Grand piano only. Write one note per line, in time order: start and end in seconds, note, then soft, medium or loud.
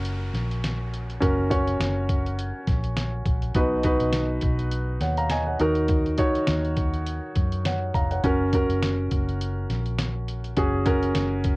0.00 1.20 C#4 medium
0.00 1.21 F#4 medium
0.00 1.22 A#4 medium
1.20 1.46 C#4 medium
1.20 1.46 F#4 medium
1.20 1.47 A#4 medium
1.50 2.49 C#4 medium
1.50 2.50 F#4 medium
1.50 2.50 C#5 medium
3.55 4.39 B2 medium
3.55 3.80 D#4 medium
3.55 3.81 F#4 medium
3.55 3.81 B4 medium
3.84 4.83 D#4 medium
3.84 4.83 F#4 medium
3.84 4.84 B4 medium
5.01 5.17 C#5 soft
5.01 5.17 F#5 medium
5.18 5.31 F5 medium
5.18 5.30 A#5 medium
5.30 5.47 D#5 medium
5.30 5.46 G#5 medium
5.47 5.75 C#5 soft
5.47 5.75 F#5 medium
5.60 6.44 D#3 medium
5.60 6.10 D#4 medium
5.60 6.10 F#4 medium
5.60 6.11 A#4 medium
6.18 7.17 D#4 medium
6.18 7.17 F#4 medium
6.18 7.18 C#5 medium
7.66 7.93 C#5 medium
7.66 7.93 F#5 medium
7.94 8.10 F5 medium
7.94 8.10 A#5 medium
8.11 8.39 C#5 soft
8.11 8.39 F#5 medium
8.24 8.49 C#4 medium
8.24 8.49 F#4 medium
8.24 8.49 A#4 medium
8.53 9.52 C#4 medium
8.53 9.52 F#4 medium
8.53 9.53 A#4 medium
10.57 10.82 C#4 medium
10.57 10.82 F#4 medium
10.57 10.83 G#4 medium
10.86 11.56 C#4 medium
10.86 11.56 F#4 medium
10.86 11.56 A#4 medium